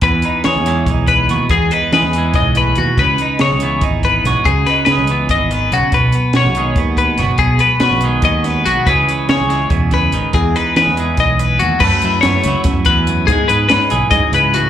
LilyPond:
<<
  \new Staff \with { instrumentName = "Clean electric guitar" } { \time 7/8 \key e \major \tempo 4 = 143 b'4 cis''4 r8 b'4 | gis'8 b'8 b'4 dis''8 b'8 fis'8 | b'4 cis''4 r8 b'4 | gis'8 b'8 b'4 dis''8 b'8 fis'8 |
b'4 cis''4 r8 b'4 | gis'8 b'8 b'4 dis''8 b'8 fis'8 | b'4 cis''4 r8 b'4 | gis'8 b'8 b'4 dis''8 b'8 fis'8 |
b'4 cis''4 r8 b'4 | gis'8 b'8 b'4 dis''8 b'8 fis'8 | }
  \new Staff \with { instrumentName = "Clean electric guitar" } { \clef bass \time 7/8 \key e \major << { r8 dis'8 gis'8 gis8 dis'4 fis'8 | r8 dis'8 gis'8 gis2 | r8 dis'8 gis'8 b8 dis'4 fis'8 | r8 dis'8 gis'8 b2 |
r8 b8 fis'8 gis8 b4 fis'8 | r8 b8 fis'8 gis8 b4 fis'8 | <e gis cis' gis'>8 cis'8 gis'8 gis2 | r8 dis'8 gis'8 gis2 |
a8 e'8 b8 e'2 | gis8 b'8 dis'8 gis'2 | } \\ { e,4. e4. b,8 | e,4. e8 gis,8 a,8 b,8 | cis4. e4. gis,8 | cis4. e8 e8 dis8 cis8 |
b,4. dis4. b,8 | b,4. dis4. b,8 | cis4. e8 b,8 cis8 dis8 | e,4. e4. e,8 |
fis,4. fis4 e,8 fis,8 | gis,4. e8 fis,8 gis,8 a,8 | } >> }
  \new Staff \with { instrumentName = "Fingered electric bass" } { \clef bass \time 7/8 \key e \major e,8 r8 e16 e,8. b,,4 dis,16 r16 | e,8 r8 e16 e,8. b,,4 dis,16 r16 | cis,8 r8 cis16 cis,8. gis,,4 b,,16 r16 | cis,8 r8 cis16 cis,8. gis,,4 b,,16 r16 |
b,,8 r8 b,16 b,,8. dis,4 fis,,16 r16 | b,,8 r8 b,16 b,,8. dis,4 b,,16 r16 | cis,8 r8 cis16 cis,8. e,4 gis,,16 r16 | e,8 r8 e16 e,8. b,,4 dis,16 r16 |
fis,16 r16 fis,8 fis,16 r16 cis,16 r16 fis,16 r16 e,4 | gis,16 r16 gis,8 gis,16 r16 b,,16 r16 gis,16 r16 cis,4 | }
  \new DrumStaff \with { instrumentName = "Drums" } \drummode { \time 7/8 <hh bd>8 hh8 <hh sn>8 <hh sn>8 <hh bd>8 <hh bd>8 hh8 | <hh bd>8 hh8 <hh sn>8 hh8 <hh bd sn>8 hh8 hh8 | <hh bd>8 hh8 <hh sn>8 hh8 <hh bd>8 <hh bd>8 <hh sn>8 | <hh bd>8 <hh sn>8 <hh sn>8 hh8 <hh bd>8 hh8 hh8 |
<hh bd>8 hh8 <hh sn>8 hh8 <hh bd>8 <hh bd>8 <hh sn>8 | <hh bd>8 hh8 <hh sn>8 hh8 <hh bd>8 <hh sn>8 hh8 | <hh bd>8 hh8 <hh sn>8 <hh sn>8 <hh bd>8 <hh bd sn>8 hh8 | <hh bd>8 hh8 <hh sn>8 hh8 <hh bd sn>8 hh8 hh8 |
<cymc bd>8 hh8 <hh sn>8 <hh sn>8 <hh bd sn>8 <hh bd>8 hh8 | <hh bd>8 hh8 <hh sn>8 hh8 <hh bd>8 hh8 hh8 | }
>>